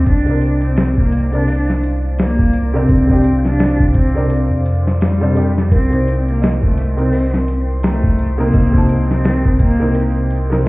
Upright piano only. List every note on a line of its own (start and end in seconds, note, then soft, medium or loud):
0.26 1.28 C3 medium
0.26 1.28 C4 medium
0.26 1.29 D4 medium
0.31 1.30 A#4 medium
1.33 1.44 C3 medium
1.33 1.44 C4 medium
1.33 1.44 D4 medium
1.33 1.45 A#4 medium
2.74 3.05 C3 loud
2.74 3.05 C4 medium
2.74 3.05 D4 medium
2.74 3.06 A#4 loud
3.08 4.10 C3 medium
3.08 4.10 C4 medium
3.08 4.11 D4 medium
3.12 4.12 G4 loud
4.15 4.81 C3 medium
4.15 4.81 C4 medium
4.15 4.82 D4 medium
4.15 4.82 A#4 loud
5.21 5.33 C3 loud
5.21 5.33 C4 medium
5.21 5.33 D4 medium
5.21 5.34 C5 loud
5.35 5.50 C3 loud
5.35 5.51 C4 medium
5.35 5.51 D4 medium
5.35 5.52 G4 loud
5.90 6.92 C3 medium
5.90 6.93 C4 medium
5.90 6.94 D#4 medium
5.95 6.95 C5 medium
6.97 7.08 C3 medium
6.97 7.08 C4 medium
6.97 7.09 D#4 medium
6.97 7.09 A#4 medium
8.38 8.69 C3 loud
8.38 8.69 C4 medium
8.38 8.70 D#4 medium
8.38 8.70 A#4 loud
8.72 9.74 C3 medium
8.72 9.75 C4 medium
8.72 9.76 D#4 medium
8.77 9.77 A5 loud
9.79 10.46 C3 loud
9.79 10.46 C4 medium
9.79 10.47 D#4 medium
9.79 10.47 A#4 loud
10.50 10.68 C3 loud
10.50 10.69 C4 medium
10.50 10.69 D#4 medium
10.50 10.69 A#4 loud